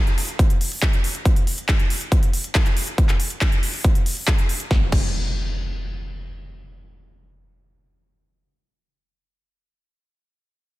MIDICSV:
0, 0, Header, 1, 3, 480
1, 0, Start_track
1, 0, Tempo, 431655
1, 1397, Time_signature, 4, 2, 24, 8
1, 12003, End_track
2, 0, Start_track
2, 0, Title_t, "Impact"
2, 0, Program_c, 0, 103
2, 5235, Note_on_c, 0, 60, 60
2, 9369, Note_off_c, 0, 60, 0
2, 12003, End_track
3, 0, Start_track
3, 0, Title_t, "Drums"
3, 78, Note_on_c, 9, 42, 51
3, 189, Note_off_c, 9, 42, 0
3, 198, Note_on_c, 9, 46, 96
3, 309, Note_off_c, 9, 46, 0
3, 318, Note_on_c, 9, 42, 48
3, 430, Note_off_c, 9, 42, 0
3, 436, Note_on_c, 9, 36, 103
3, 438, Note_on_c, 9, 42, 86
3, 547, Note_off_c, 9, 36, 0
3, 549, Note_off_c, 9, 42, 0
3, 558, Note_on_c, 9, 42, 51
3, 669, Note_off_c, 9, 42, 0
3, 678, Note_on_c, 9, 46, 89
3, 789, Note_off_c, 9, 46, 0
3, 798, Note_on_c, 9, 46, 54
3, 909, Note_off_c, 9, 46, 0
3, 916, Note_on_c, 9, 36, 108
3, 918, Note_on_c, 9, 39, 111
3, 918, Note_on_c, 9, 42, 88
3, 1027, Note_off_c, 9, 36, 0
3, 1029, Note_off_c, 9, 39, 0
3, 1029, Note_off_c, 9, 42, 0
3, 1038, Note_on_c, 9, 42, 48
3, 1149, Note_off_c, 9, 42, 0
3, 1158, Note_on_c, 9, 46, 92
3, 1269, Note_off_c, 9, 46, 0
3, 1278, Note_on_c, 9, 42, 51
3, 1389, Note_off_c, 9, 42, 0
3, 1395, Note_on_c, 9, 36, 108
3, 1398, Note_on_c, 9, 42, 92
3, 1506, Note_off_c, 9, 36, 0
3, 1509, Note_off_c, 9, 42, 0
3, 1517, Note_on_c, 9, 42, 51
3, 1628, Note_off_c, 9, 42, 0
3, 1637, Note_on_c, 9, 46, 90
3, 1748, Note_off_c, 9, 46, 0
3, 1757, Note_on_c, 9, 42, 50
3, 1869, Note_off_c, 9, 42, 0
3, 1875, Note_on_c, 9, 36, 109
3, 1876, Note_on_c, 9, 39, 107
3, 1876, Note_on_c, 9, 42, 90
3, 1986, Note_off_c, 9, 36, 0
3, 1987, Note_off_c, 9, 39, 0
3, 1987, Note_off_c, 9, 42, 0
3, 1996, Note_on_c, 9, 42, 51
3, 2107, Note_off_c, 9, 42, 0
3, 2116, Note_on_c, 9, 46, 97
3, 2228, Note_off_c, 9, 46, 0
3, 2236, Note_on_c, 9, 42, 53
3, 2348, Note_off_c, 9, 42, 0
3, 2355, Note_on_c, 9, 36, 103
3, 2357, Note_on_c, 9, 42, 87
3, 2466, Note_off_c, 9, 36, 0
3, 2468, Note_off_c, 9, 42, 0
3, 2477, Note_on_c, 9, 42, 51
3, 2588, Note_off_c, 9, 42, 0
3, 2597, Note_on_c, 9, 46, 93
3, 2708, Note_off_c, 9, 46, 0
3, 2716, Note_on_c, 9, 42, 50
3, 2827, Note_off_c, 9, 42, 0
3, 2835, Note_on_c, 9, 36, 106
3, 2836, Note_on_c, 9, 39, 113
3, 2836, Note_on_c, 9, 42, 90
3, 2946, Note_off_c, 9, 36, 0
3, 2947, Note_off_c, 9, 39, 0
3, 2947, Note_off_c, 9, 42, 0
3, 2956, Note_on_c, 9, 39, 32
3, 2956, Note_on_c, 9, 42, 50
3, 3067, Note_off_c, 9, 39, 0
3, 3067, Note_off_c, 9, 42, 0
3, 3076, Note_on_c, 9, 46, 91
3, 3187, Note_off_c, 9, 46, 0
3, 3195, Note_on_c, 9, 42, 51
3, 3307, Note_off_c, 9, 42, 0
3, 3315, Note_on_c, 9, 36, 110
3, 3316, Note_on_c, 9, 42, 88
3, 3426, Note_off_c, 9, 36, 0
3, 3427, Note_off_c, 9, 42, 0
3, 3436, Note_on_c, 9, 39, 34
3, 3436, Note_on_c, 9, 42, 53
3, 3547, Note_off_c, 9, 39, 0
3, 3547, Note_off_c, 9, 42, 0
3, 3555, Note_on_c, 9, 46, 96
3, 3666, Note_off_c, 9, 46, 0
3, 3675, Note_on_c, 9, 42, 51
3, 3786, Note_off_c, 9, 42, 0
3, 3795, Note_on_c, 9, 36, 110
3, 3796, Note_on_c, 9, 39, 108
3, 3796, Note_on_c, 9, 42, 89
3, 3906, Note_off_c, 9, 36, 0
3, 3907, Note_off_c, 9, 39, 0
3, 3907, Note_off_c, 9, 42, 0
3, 3916, Note_on_c, 9, 42, 53
3, 4027, Note_off_c, 9, 42, 0
3, 4036, Note_on_c, 9, 46, 98
3, 4147, Note_off_c, 9, 46, 0
3, 4156, Note_on_c, 9, 46, 55
3, 4267, Note_off_c, 9, 46, 0
3, 4275, Note_on_c, 9, 36, 109
3, 4276, Note_on_c, 9, 42, 85
3, 4387, Note_off_c, 9, 36, 0
3, 4387, Note_off_c, 9, 42, 0
3, 4396, Note_on_c, 9, 42, 51
3, 4507, Note_off_c, 9, 42, 0
3, 4516, Note_on_c, 9, 46, 92
3, 4627, Note_off_c, 9, 46, 0
3, 4636, Note_on_c, 9, 46, 52
3, 4747, Note_off_c, 9, 46, 0
3, 4755, Note_on_c, 9, 36, 108
3, 4755, Note_on_c, 9, 39, 109
3, 4866, Note_off_c, 9, 36, 0
3, 4866, Note_off_c, 9, 39, 0
3, 4876, Note_on_c, 9, 42, 51
3, 4987, Note_off_c, 9, 42, 0
3, 4996, Note_on_c, 9, 46, 91
3, 5107, Note_off_c, 9, 46, 0
3, 5117, Note_on_c, 9, 42, 49
3, 5228, Note_off_c, 9, 42, 0
3, 5235, Note_on_c, 9, 36, 103
3, 5236, Note_on_c, 9, 38, 79
3, 5346, Note_off_c, 9, 36, 0
3, 5347, Note_off_c, 9, 38, 0
3, 5475, Note_on_c, 9, 36, 104
3, 5476, Note_on_c, 9, 49, 75
3, 5586, Note_off_c, 9, 36, 0
3, 5587, Note_off_c, 9, 49, 0
3, 12003, End_track
0, 0, End_of_file